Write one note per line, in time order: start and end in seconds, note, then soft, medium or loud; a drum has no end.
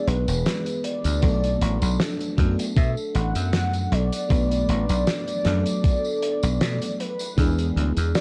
0.00 1.25 E3 loud
0.00 1.24 G#3 medium
0.00 1.23 B3 medium
0.00 1.24 D4 medium
0.00 1.19 G#4 loud
0.00 1.24 B4 loud
0.07 0.25 B1 loud
0.07 0.84 B4 loud
0.07 closed hi-hat medium
0.28 0.43 E1 medium
0.28 closed hi-hat medium
0.28 tambourine medium
0.46 snare loud
0.46 closed hi-hat medium
0.46 tambourine soft
0.66 closed hi-hat medium
0.66 tambourine soft
0.84 2.34 D5 loud
0.84 closed hi-hat medium
1.04 1.20 D2 medium
1.04 closed hi-hat medium
1.04 tambourine medium
1.21 1.56 B1 loud
1.21 2.33 F#3 medium
1.21 2.34 A3 medium
1.21 2.34 B3 medium
1.21 2.34 D4 medium
1.21 2.35 A4 loud
1.21 kick loud
1.21 closed hi-hat medium
1.21 tambourine soft
1.44 closed hi-hat medium
1.44 tambourine soft
1.61 1.79 A1 medium
1.61 closed hi-hat medium
1.82 1.97 B1 medium
1.82 closed hi-hat medium
1.82 tambourine medium
2.00 snare loud
2.00 closed hi-hat medium
2.00 tambourine soft
2.20 closed hi-hat soft
2.20 tambourine soft
2.37 2.56 F#2 loud
2.37 4.25 F#3 medium
2.37 4.26 A3 medium
2.37 4.26 B3 medium
2.37 4.27 D4 medium
2.37 4.27 A4 loud
2.37 kick loud
2.37 closed hi-hat medium
2.59 closed hi-hat medium
2.59 tambourine medium
2.76 2.94 B2 medium
2.76 2.91 E5 loud
2.76 kick loud
2.76 closed hi-hat medium
2.76 tambourine soft
2.97 tambourine soft
3.15 3.33 A1 medium
3.15 3.94 F#5 loud
3.15 closed hi-hat medium
3.35 3.87 F#2 medium
3.35 closed hi-hat medium
3.35 tambourine medium
3.53 snare loud
3.53 closed hi-hat medium
3.53 tambourine soft
3.73 closed hi-hat medium
3.73 tambourine soft
3.92 4.09 B1 loud
3.92 7.01 D5 loud
3.92 closed hi-hat medium
4.13 closed hi-hat medium
4.13 tambourine medium
4.29 4.63 B1 loud
4.29 5.41 F#3 medium
4.29 5.41 A3 medium
4.29 5.42 B3 medium
4.29 5.42 D4 medium
4.29 5.42 B4 loud
4.29 kick loud
4.29 closed hi-hat medium
4.29 tambourine soft
4.51 closed hi-hat medium
4.51 tambourine soft
4.69 4.86 A1 medium
4.69 closed hi-hat medium
4.89 5.05 B1 medium
4.89 closed hi-hat medium
4.89 tambourine medium
5.07 snare loud
5.07 closed hi-hat medium
5.07 tambourine soft
5.28 closed hi-hat medium
5.28 tambourine soft
5.44 5.63 F#2 loud
5.44 6.97 F#3 loud
5.44 6.97 A3 medium
5.44 6.97 B3 medium
5.44 6.98 D4 medium
5.44 6.98 A4 loud
5.44 snare medium
5.44 closed hi-hat medium
5.66 closed hi-hat medium
5.66 tambourine medium
5.84 kick loud
5.84 closed hi-hat medium
5.84 tambourine soft
6.05 tambourine soft
6.22 closed hi-hat medium
6.43 6.58 B1 loud
6.43 closed hi-hat medium
6.43 tambourine medium
6.61 6.79 B2 loud
6.61 snare loud
6.61 closed hi-hat medium
6.61 tambourine soft
6.81 closed hi-hat medium
6.81 tambourine soft
7.00 7.77 B4 medium
7.00 closed hi-hat medium
7.19 closed hi-hat medium
7.19 tambourine medium
7.37 7.71 E2 loud
7.37 8.21 E3 loud
7.37 8.21 G#3 medium
7.37 8.21 B3 medium
7.37 8.21 D4 medium
7.37 8.21 G#4 loud
7.37 kick loud
7.37 closed hi-hat medium
7.37 tambourine medium
7.58 closed hi-hat medium
7.58 tambourine soft
7.76 7.94 D2 medium
7.76 closed hi-hat medium
7.97 8.12 E2 medium
7.97 closed hi-hat medium
7.97 tambourine medium
8.15 8.21 D5 loud
8.15 snare loud
8.15 closed hi-hat medium
8.15 tambourine medium